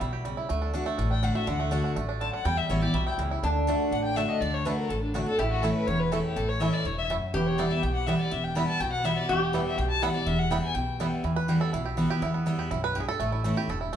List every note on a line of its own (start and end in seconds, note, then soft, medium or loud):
0.00 0.33 B1 medium
0.00 0.24 B2 medium
0.00 0.24 G3 medium
0.00 0.23 E4 medium
0.00 0.11 G4 medium
0.13 0.47 G4 medium
0.25 0.48 C#3 medium
0.25 0.49 G3 medium
0.37 0.50 E4 medium
0.49 0.82 D2 medium
0.49 0.72 D3 medium
0.49 0.84 A3 medium
0.62 0.73 D4 medium
0.74 0.86 D3 medium
0.74 0.86 A3 medium
0.74 0.97 D4 medium
0.74 0.86 D4 loud
0.74 0.84 F#4 medium
0.86 1.20 A3 medium
0.86 0.99 D4 soft
0.86 0.98 F#4 medium
0.98 1.30 A1 medium
0.98 1.45 A2 medium
0.98 1.10 D4 medium
1.11 1.22 D4 medium
1.11 1.25 G5 loud
1.23 1.35 D3 medium
1.23 1.35 A3 medium
1.23 1.57 D4 medium
1.23 1.35 D4 medium
1.23 1.34 F#4 medium
1.23 1.37 F#5 medium
1.35 1.58 A3 medium
1.35 1.48 D4 soft
1.35 1.47 F#4 medium
1.35 1.48 E5 medium
1.47 1.80 D2 medium
1.47 1.70 D3 medium
1.47 1.82 D3 medium
1.47 1.84 F#5 medium
1.59 1.94 A3 medium
1.71 1.95 D3 medium
1.71 1.95 A3 medium
1.71 1.83 D4 medium
1.71 1.95 D4 loud
1.71 1.96 F#4 loud
1.84 2.07 D4 medium
1.96 2.29 A1 medium
1.96 2.20 G2 medium
1.96 2.31 A3 medium
2.09 2.32 D4 medium
2.21 2.44 F#2 medium
2.21 2.45 D3 medium
2.21 2.32 A5 medium
2.33 2.46 D4 medium
2.33 2.46 F#5 medium
2.45 2.61 E2 medium
2.45 2.92 E2 medium
2.45 2.80 G3 medium
2.45 2.59 G5 loud
2.57 2.71 E5 medium
2.69 2.90 A1 medium
2.69 2.81 E3 medium
2.69 2.82 G3 medium
2.69 2.82 B3 medium
2.69 3.04 E4 soft
2.69 2.80 E4 medium
2.69 2.81 C#5 medium
2.81 2.94 B3 soft
2.81 2.93 E4 medium
2.81 3.16 G4 medium
2.81 2.96 D5 medium
2.94 3.15 B1 medium
2.94 3.17 B2 medium
2.94 3.29 G3 medium
2.94 3.06 E5 medium
3.07 3.30 E4 medium
3.07 3.14 G5 medium
3.18 3.39 C#2 medium
3.18 3.42 C#3 medium
3.18 3.43 E3 medium
3.31 3.43 E4 medium
3.43 3.75 D2 medium
3.43 3.66 D3 medium
3.43 5.35 D4 medium
3.67 3.91 D3 medium
3.67 3.91 A3 medium
3.67 3.74 A3 medium
3.67 3.91 D4 loud
3.67 3.71 D4 medium
3.67 3.92 F#4 loud
3.91 4.24 A1 medium
3.91 4.39 A2 medium
3.91 4.04 F#5 medium
4.04 4.18 G5 loud
4.16 4.40 D3 medium
4.16 4.40 A3 medium
4.16 4.22 A3 medium
4.16 4.40 D4 medium
4.16 4.20 D4 medium
4.16 4.41 F#4 medium
4.16 4.30 E5 medium
4.28 4.42 D#5 medium
4.41 4.73 D2 medium
4.41 4.64 D3 medium
4.41 4.55 D5 medium
4.54 4.67 C#5 medium
4.65 4.89 D3 medium
4.65 4.89 A3 loud
4.65 4.71 A3 medium
4.65 4.89 D4 medium
4.65 4.69 D4 medium
4.65 4.89 F#4 loud
4.65 4.77 B4 medium
4.78 4.91 A#4 medium
4.89 5.22 A1 medium
4.89 5.37 A2 medium
4.89 5.02 A4 medium
5.02 5.16 D4 soft
5.14 5.26 D3 medium
5.14 5.26 A3 medium
5.14 5.20 A3 medium
5.14 5.27 D4 medium
5.14 5.17 D4 medium
5.14 5.25 F#4 medium
5.14 5.25 F#4 loud
5.26 5.39 D4 soft
5.26 5.38 F#4 medium
5.26 5.40 A4 loud
5.39 5.71 A1 medium
5.39 5.85 A2 medium
5.39 7.18 E4 medium
5.39 5.50 G4 medium
5.50 5.64 F#4 loud
5.62 5.86 E3 medium
5.62 5.69 A3 medium
5.62 5.87 A3 medium
5.62 5.69 C#4 medium
5.62 5.87 C#4 loud
5.62 5.69 E4 medium
5.62 5.87 E4 loud
5.62 5.74 A4 medium
5.75 5.89 B4 medium
5.87 6.19 E1 medium
5.87 6.34 E2 medium
5.87 6.01 C#5 medium
5.99 6.13 B4 loud
6.12 6.35 E3 medium
6.12 6.18 A3 medium
6.12 6.35 A3 medium
6.12 6.18 C#4 medium
6.12 6.36 C#4 medium
6.12 6.18 E4 medium
6.12 6.36 E4 loud
6.12 6.23 A4 medium
6.24 6.38 G4 medium
6.36 6.68 A1 medium
6.36 6.83 A2 medium
6.36 6.50 A4 medium
6.49 6.62 C#5 medium
6.60 6.84 E3 medium
6.60 6.84 A3 medium
6.60 6.67 A3 medium
6.60 6.84 C#4 medium
6.60 6.67 C#4 medium
6.60 6.85 E4 medium
6.60 6.67 E4 medium
6.60 6.75 E5 loud
6.73 6.87 D5 medium
6.85 7.17 E1 medium
6.85 7.08 G2 medium
6.85 6.97 C#5 medium
6.98 7.05 E5 medium
7.10 7.33 F#2 medium
7.10 7.15 A3 medium
7.10 7.16 C#4 medium
7.10 7.16 E4 medium
7.34 7.66 E1 medium
7.34 7.80 E2 medium
7.34 9.25 G4 loud
7.34 7.48 B4 medium
7.46 7.60 C#5 medium
7.58 7.70 E3 medium
7.58 7.70 G3 medium
7.58 7.64 G3 medium
7.58 7.70 B3 medium
7.58 7.64 B3 medium
7.58 7.69 E4 medium
7.58 7.64 E4 medium
7.58 7.73 D5 medium
7.70 7.83 B3 medium
7.70 7.82 E4 medium
7.70 7.84 E5 loud
7.83 8.15 B1 medium
7.83 8.29 B2 medium
7.83 7.94 G5 medium
7.95 8.08 F#5 loud
8.07 8.30 E3 medium
8.07 8.31 G3 medium
8.07 8.13 G3 medium
8.07 8.31 B3 medium
8.07 8.13 B3 medium
8.07 8.31 E4 medium
8.07 8.13 E4 medium
8.07 8.21 E5 medium
8.20 8.33 D5 medium
8.31 8.64 E1 medium
8.31 8.78 E2 medium
8.31 8.45 E5 medium
8.44 8.57 G5 medium
8.55 8.79 E3 medium
8.55 8.79 G3 medium
8.55 8.62 G3 medium
8.55 8.79 B3 medium
8.55 8.62 B3 medium
8.55 8.80 E4 loud
8.55 8.62 E4 medium
8.55 8.67 B5 medium
8.67 8.82 A5 loud
8.80 9.12 B1 medium
8.80 9.27 B2 medium
8.80 8.91 G5 loud
8.92 9.06 F#5 loud
9.04 9.27 E3 medium
9.04 9.28 G3 medium
9.04 9.10 G3 medium
9.04 9.28 B3 loud
9.04 9.11 B3 medium
9.04 9.28 E4 loud
9.04 9.11 E4 medium
9.04 9.19 E5 medium
9.17 9.30 D5 loud
9.29 9.61 E1 loud
9.29 9.76 E2 medium
9.29 11.08 G4 loud
9.29 9.41 E5 loud
9.42 9.55 G4 medium
9.53 9.77 E3 medium
9.53 9.77 G3 medium
9.53 9.59 G3 medium
9.53 9.77 B3 loud
9.53 9.59 B3 medium
9.53 9.60 E4 medium
9.53 9.77 E4 loud
9.53 9.65 B4 medium
9.65 9.79 E5 medium
9.78 10.10 B1 medium
9.78 10.24 B2 medium
9.78 9.89 G5 medium
9.90 10.04 A5 loud
10.02 10.14 E3 medium
10.02 10.14 G3 medium
10.02 10.08 G3 medium
10.02 10.14 B3 loud
10.02 10.08 B3 medium
10.02 10.08 E4 medium
10.02 10.13 E4 loud
10.02 10.16 F#5 medium
10.14 10.27 B3 soft
10.14 10.26 E4 medium
10.14 10.27 D5 loud
10.26 10.58 E1 loud
10.26 10.73 E2 medium
10.26 10.40 E5 loud
10.39 10.52 F#5 loud
10.50 10.74 E3 medium
10.50 10.57 G3 medium
10.50 10.74 G3 medium
10.50 10.57 B3 medium
10.50 10.75 B3 loud
10.50 10.57 E4 medium
10.50 10.75 E4 loud
10.50 10.62 G5 medium
10.62 10.76 G#5 loud
10.74 11.07 B1 medium
10.74 11.22 B2 medium
10.74 11.11 G5 medium
11.00 11.23 E3 medium
11.00 11.23 G3 medium
11.00 11.05 G3 medium
11.00 11.06 B3 medium
11.00 11.24 B3 medium
11.00 11.06 E4 medium
11.00 11.24 E4 medium
11.24 11.56 E2 medium
11.24 11.70 E2 medium
11.24 12.64 E3 medium
11.36 11.61 B4 loud
11.48 11.72 E3 medium
11.48 11.72 G3 medium
11.48 11.72 B3 medium
11.48 11.73 E4 loud
11.48 11.83 G4 medium
11.61 11.73 A4 loud
11.73 12.05 B1 medium
11.73 12.20 B2 medium
11.73 12.22 E4 medium
11.85 12.09 G4 medium
11.97 12.09 E3 medium
11.97 12.09 G3 medium
11.97 12.32 B3 medium
11.97 12.10 B3 medium
11.97 12.08 E4 medium
12.09 12.22 B3 medium
12.09 12.21 E4 medium
12.09 12.23 G4 medium
12.22 12.54 E2 medium
12.22 12.68 E2 medium
12.22 12.45 E4 medium
12.34 12.68 B3 medium
12.46 12.69 E3 medium
12.46 12.70 G3 medium
12.46 12.70 B3 medium
12.46 12.71 E4 medium
12.46 12.70 E4 loud
12.59 12.93 G4 medium
12.71 13.03 B1 medium
12.71 12.94 F#2 medium
12.71 12.83 E4 medium
12.84 13.00 B4 loud
12.95 13.18 G2 medium
12.95 13.20 G4 medium
13.00 13.07 G#4 medium
13.09 13.32 A4 loud
13.20 13.52 A1 medium
13.20 13.66 A2 medium
13.20 13.43 A3 medium
13.32 13.69 E4 medium
13.44 13.56 E3 medium
13.44 13.78 A3 medium
13.44 13.56 A3 medium
13.44 13.57 C#4 loud
13.44 13.55 E4 medium
13.57 13.69 C#4 soft
13.57 13.68 E4 medium
13.57 13.69 G4 medium
13.68 13.96 E1 medium
13.68 13.92 G2 medium
13.68 13.80 A4 medium
13.81 13.96 E4 medium
13.93 13.96 A3 medium